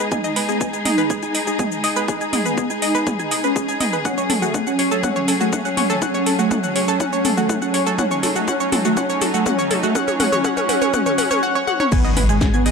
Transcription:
Already playing: G#3 D#4 G#4
0.12 D#4 G#5, kick, mid tom, shaker
0.24 D#5, shaker
0.36 B4, open hi-hat, shaker
0.49 B3 G#4, shaker
0.61 G#5, kick, shaker
0.73 D#4 G#5, shaker
0.85 D#5, mid tom, open hi-hat, shaker
0.98 B4, shaker
1.10 G#4, kick, shaker
1.23 D#4 G#5, shaker
1.35 D#5, open hi-hat, shaker
1.47 D#4 G#4, shaker
1.59 G#4, kick, mid tom, shaker
1.72 shaker
1.84 D#5, open hi-hat, shaker
1.96 B4, shaker
2.08 D#4 G#4, kick, shaker
2.21 G#5, shaker
2.33 D#5, mid tom, open hi-hat, shaker
2.46 B3 B4, shaker
2.58 G#4, kick, shaker
2.70 D#4 G#5, shaker
2.82 D#5, open hi-hat, shaker
2.95 B4, shaker
3.07 G#4, kick, mid tom, shaker
3.19 D#4 G#5, shaker
3.31 D#5, open hi-hat, shaker
3.44 C#4 B4, shaker
3.56 G#4, kick, shaker
3.68 G#5, shaker
3.81 D#5, mid tom, open hi-hat, shaker
3.93 B4, shaker
4.05 F#3 C#4 F#5, kick, mid tom, shaker
4.18 C#5, shaker
4.30 A4, mid tom, open hi-hat, shaker
4.42 A3 F#4, shaker
4.54 F#5, kick, mid tom, shaker
4.67 C#4 F#5, shaker
4.79 C#5, open hi-hat, shaker
4.91 A4, shaker
5.03 C#4 F#5, kick, mid tom, shaker
5.16 C#5, shaker
5.28 A4, open hi-hat, shaker
5.41 A3 F#4, shaker
5.53 F#5, kick, mid tom, shaker
5.65 C#4 F#5, shaker
5.77 C#5, mid tom, open hi-hat, shaker
5.90 A4, shaker
6.02 C#4 F#5, kick, mid tom, shaker
6.14 C#5, shaker
6.26 A4, open hi-hat, shaker
6.39 A3 F#4, shaker
6.51 F#5, kick, mid tom, shaker
6.63 C#4 F#5, shaker
6.76 C#5, open hi-hat, shaker
6.88 A4, shaker
7.00 C#4 F#5, kick, mid tom, shaker
7.13 C#5, shaker
7.25 A4, mid tom, open hi-hat, shaker
7.37 A3 F#4, shaker
7.49 F#5, kick, mid tom, shaker
7.62 C#4 F#5, shaker
7.74 C#5, open hi-hat, shaker
7.87 A4, shaker
7.99 C#4 D#4 F#5, kick, mid tom, shaker
8.11 C#5, shaker
8.23 A4, open hi-hat, mid tom, shaker
8.36 A3 F#4, shaker
8.48 C#4 F#5, kick, mid tom, shaker
8.60 C#5, shaker
8.72 A4, mid tom, open hi-hat, shaker
8.85 A3 F#4, shaker
8.97 C#4 F#5, kick, mid tom, shaker
9.09 C#5, shaker
9.21 A4, open hi-hat, mid tom, shaker
9.34 A3 F#4, shaker
9.46 C#4 F#5, kick, mid tom, shaker
9.59 C#5, shaker
9.71 A4, open hi-hat, mid tom, shaker
9.83 A3 F#4, shaker
9.95 C#4 F#5, kick, mid tom, shaker
10.08 C#5, mid tom, shaker
10.20 C#4 F#5, mid tom, open hi-hat, shaker
10.32 C#5, mid tom, shaker
10.44 C#4 F#5, kick, mid tom, shaker
10.57 C#5, mid tom, shaker
10.69 C#4 F#5, open hi-hat, mid tom, shaker
10.82 C#5, mid tom, shaker
10.94 C#4 F#5, kick, mid tom, shaker
11.06 C#5, mid tom, shaker
11.18 C#4 F#5, open hi-hat, mid tom, shaker
11.31 C#5, mid tom, shaker
11.43 F#5
11.55 C#5
11.67 F#5, high tom
11.80 C#5, mid tom
11.92 G#1 G#3 B3 D#4 G#4 G#5, kick, cross-stick, crash, impact, shaker
12.05 D#5, shaker
12.17 B4, mid tom, open hi-hat
12.29 G#3 G#4, cross-stick, shaker
12.41 G#5, kick, snare, shaker
12.54 B3 G#5, shaker
12.66 D#5, cross-stick, open hi-hat, shaker

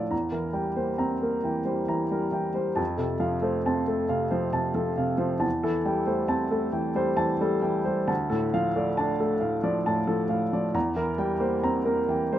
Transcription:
Already playing: A2 F3 A3 D4 A4 D5 F5 A5
0.11 E2 A#5
0.32 E3 A#4
0.53 G3 G5
0.76 A#3 C5
0.98 C4 A#5
1.23 A#3 A#4
1.44 E3 G5
1.65 G3 C5
1.88 E3 A#5
2.11 G3 A#4
2.32 E3 G5
2.54 G3 C5
2.76 F2 A5
2.97 C3 A4
3.20 F3 F5
3.42 A3 C5
3.66 C4 A5
3.87 A3 A4
4.09 C3 F5
4.31 F3 C5
4.52 C3 A5
4.74 F3 A4
4.98 C3 F5
5.18 F3 C5
5.39 E2 A5
5.63 E3 A4
5.85 G3 G5
6.06 A3 C5
6.28 C4 A5
6.51 A3 A4
6.72 E3 G5
6.95 G3 C5
7.17 E3 A5
7.41 G3 A4
7.62 E3 G5
7.85 G3 C5
8.07 D2 A5
8.30 A2 A4
8.54 F3 F5
8.76 A3 D5
8.97 D4 A5
9.20 A3 A4
9.41 A2 F5
9.63 F3 D5
9.86 A2 A5
10.07 F3 A4
10.29 A2 F5
10.53 F3 D5
10.74 E2 A#5
10.96 E3 A#4
11.18 G3 G5
11.40 A#3 C5
11.63 C4 A#5
11.85 A#3 A#4
12.08 E3 G5
12.32 G3 C5

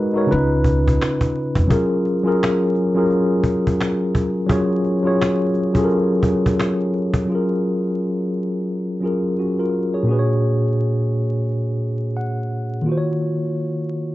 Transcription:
Already playing: G#3 D#4 F#4 A#4 B4 D#5
0.13 G#3 D#4 F#4 A#4, cajon slap
0.17 C#5
0.26 C#3 C#4 D#4 F4
0.31 C#2 B4, cajon slap
0.64 cajon bass
0.88 cajon bass
1.02 cajon slap
1.21 cajon bass
1.35 cajon slap
1.55 F1, cajon bass
1.67 F#3 C#4 F4 G#4, cajon bass
1.72 A#4
2.06 cajon slap
2.23 F#3 C#4 F4 G#4, cajon slap
2.28 A#4
2.43 cajon slap
2.75 cajon slap
2.94 F#3 C#4 F4 G#4 A#4, cajon slap
3.10 cajon slap
3.44 cajon bass
3.67 cajon bass
3.80 cajon slap
4.15 cajon bass
4.47 F#3 C#4 F4 G#4, cajon bass
4.52 C#5
4.84 cajon slap
5.03 F#3 C#4 F4 G#4
5.07 C#5
5.21 cajon slap
5.54 cajon slap
5.73 F#3 C#4 F4 G#4, cajon bass
5.78 A4
5.84 A#4
5.90 cajon slap
6.23 cajon bass
6.46 cajon bass
6.60 cajon slap
6.94 cajon slap
7.14 cajon bass
7.25 F#3 C#4
7.30 F4 G#4
7.35 A#4
9.01 F#3 C#4 F4 G#4
9.06 A#4
9.39 C#4 F#4
9.59 F4 A#4
9.94 G#4 C#5
10.03 A#2 A#3
10.07 D4 F#4 G#4
10.12 B4
10.19 C#5
12.17 F#5
12.82 D#3 A#3
12.86 F4 F#4
12.92 C5
12.97 C#5

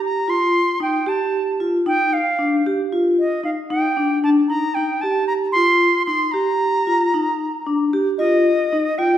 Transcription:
0.05 A#5
0.28 F4 C6
0.80 D#4 G5
1.06 G4 A5
1.60 F4
1.86 D#4 G5
2.13 F5
2.39 D4
2.66 G4
2.92 F4
3.19 D#5
3.44 D#4 F5
3.70 D#4 G5
3.97 D4
4.24 D4 A5
4.48 D#4 A#5
4.75 D#4 G5
5.01 G4 A5
5.27 A#5
5.52 F4 C6
6.06 D#4 C6
6.32 G4 A#5
6.87 F4
7.14 D#4
7.66 D4
7.93 G4
8.18 F4 D#5
8.73 D#4
8.98 F4 G5

